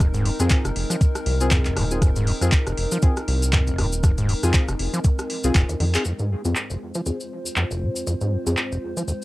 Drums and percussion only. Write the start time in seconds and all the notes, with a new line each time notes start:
0.00 kick, cross-stick, closed hi-hat, cabasa
0.14 closed hi-hat, cabasa
0.26 open hi-hat
0.40 cross-stick, closed hi-hat, cabasa
0.50 kick, clap, closed hi-hat, cabasa
0.65 cross-stick, closed hi-hat, cabasa
0.76 open hi-hat
0.90 cross-stick, closed hi-hat, cabasa
1.01 kick, closed hi-hat, cabasa
1.15 cross-stick, closed hi-hat, cabasa
1.26 open hi-hat
1.41 closed hi-hat, cabasa
1.51 kick, cross-stick, clap, closed hi-hat, cabasa
1.65 clap, closed hi-hat, cabasa
1.77 cross-stick, open hi-hat
1.91 closed hi-hat, cabasa
2.02 kick, cross-stick, closed hi-hat, cabasa
2.16 closed hi-hat, cabasa
2.27 open hi-hat
2.41 cross-stick, closed hi-hat, cabasa
2.52 kick, clap, closed hi-hat, cabasa
2.67 cross-stick, closed hi-hat, cabasa
2.77 open hi-hat
2.92 cross-stick, closed hi-hat, cabasa
3.02 kick, closed hi-hat, cabasa
3.17 cross-stick, closed hi-hat, cabasa
3.28 open hi-hat
3.42 closed hi-hat, cabasa
3.53 kick, cross-stick, clap, closed hi-hat, cabasa
3.67 closed hi-hat, cabasa
3.78 cross-stick, open hi-hat
3.92 closed hi-hat, cabasa
4.03 kick, cross-stick, closed hi-hat, cabasa
4.18 closed hi-hat, cabasa
4.29 open hi-hat
4.43 cross-stick, closed hi-hat, cabasa
4.54 kick, clap, closed hi-hat, cabasa
4.68 cross-stick, closed hi-hat, cabasa
4.79 open hi-hat
4.94 closed hi-hat, cabasa
5.04 kick, closed hi-hat, cabasa
5.19 cross-stick, closed hi-hat, cabasa
5.30 open hi-hat
5.44 closed hi-hat, cabasa
5.55 kick, clap, closed hi-hat, cabasa
5.69 closed hi-hat, cabasa
5.80 open hi-hat
5.94 clap, closed hi-hat, cabasa
6.05 cabasa
6.19 cabasa
6.45 cabasa
6.55 clap, cabasa
6.70 cabasa
6.94 cabasa
7.06 cabasa
7.20 cabasa
7.46 cabasa
7.56 clap, cabasa
7.71 cabasa
7.96 cabasa
8.07 cabasa
8.21 cabasa
8.47 cabasa
8.57 clap, cabasa
8.72 cabasa
8.97 cabasa
9.08 cabasa